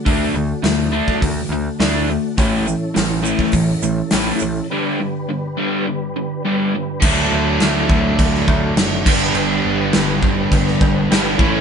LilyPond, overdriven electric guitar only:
\new Staff \with { instrumentName = "Overdriven electric guitar" } { \clef bass \time 4/4 \key g \lydian \tempo 4 = 103 <d a d'>8 <d a>8 <d a>8 <d a d'>8 <d a>8 <d a>8 <d a d'>8 <d a>8 | <a, e a>8 <a, e>8 <a, e>8 <a, e a>8 <a, e>8 <a, e>8 <a, e a>8 <a, e>8 | <g, d g>8 <g, d>8 <g, d>8 <g, d g>8 <g, d>8 <g, d>8 <g, d g>8 <g, d>8 | <d fis a d'>2.~ <d fis a d'>8 <g, d g b d'>8~ |
<g, d g b d'>2. <g, d g b d'>8 <a, e a cis' e'>8 | }